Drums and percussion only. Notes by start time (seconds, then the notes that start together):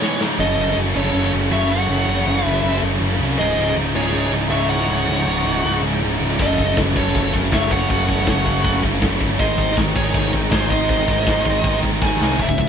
0.02 snare
0.21 snare
6.39 kick, crash
6.58 kick
6.77 kick, snare, crash
6.96 kick
7.15 kick, crash
7.34 kick
7.52 kick, snare, crash
7.71 kick
7.90 kick, crash
8.09 kick
8.27 kick, snare, crash
8.46 kick
8.64 kick, crash
8.83 kick
9.02 kick, snare, crash
9.21 kick
9.39 kick, crash
9.58 kick
9.77 kick, snare, crash
9.96 kick
10.14 kick, crash
10.33 kick
10.52 kick, snare, crash
10.70 kick
10.89 kick, crash
11.08 kick
11.27 kick, snare, crash
11.45 kick
11.64 kick, crash
11.83 kick
12.02 kick, snare
12.21 snare
12.39 kick, ride
12.49 kick
12.58 kick, ride